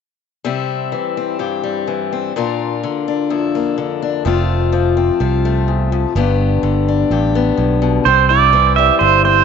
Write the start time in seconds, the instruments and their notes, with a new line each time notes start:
0.44 steel-string acoustic guitar C3 G3 C4 E4
0.92 steel-string acoustic guitar E3
1.17 steel-string acoustic guitar C4
1.39 steel-string acoustic guitar G2 G4
1.64 steel-string acoustic guitar G3
1.87 steel-string acoustic guitar E3
2.13 steel-string acoustic guitar C4
2.36 steel-string acoustic guitar A#2 A#3 D4 F4
2.83 steel-string acoustic guitar D3
3.08 steel-string acoustic guitar D4
3.30 steel-string acoustic guitar F2 E4
3.55 steel-string acoustic guitar A#3
3.78 steel-string acoustic guitar D3
4.02 steel-string acoustic guitar D4
4.25 fingered electric bass F1, steel-string acoustic guitar F2 A3 C4 F4
4.72 steel-string acoustic guitar F3
4.97 steel-string acoustic guitar C4
5.20 fingered electric bass C2, steel-string acoustic guitar C3 F4
5.45 steel-string acoustic guitar A3
5.68 steel-string acoustic guitar E2
5.92 steel-string acoustic guitar F2
6.15 fingered electric bass G1, steel-string acoustic guitar G2 B3 D4 G4
6.63 fingered electric bass G1, steel-string acoustic guitar D3
6.88 steel-string acoustic guitar D4
7.10 fingered electric bass A1, steel-string acoustic guitar G2 G4
7.35 steel-string acoustic guitar B3
7.58 fingered electric bass B1, steel-string acoustic guitar A2
7.82 steel-string acoustic guitar B2
8.05 fingered electric bass C2, steel-string acoustic guitar C3 C4, pedal steel guitar C5
8.29 steel-string acoustic guitar E4, pedal steel guitar D5
8.53 steel-string acoustic guitar E3 C4
8.76 steel-string acoustic guitar G3, pedal steel guitar E5
8.99 fingered electric bass G1, steel-string acoustic guitar G2, pedal steel guitar C5
9.25 steel-string acoustic guitar C4, pedal steel guitar C5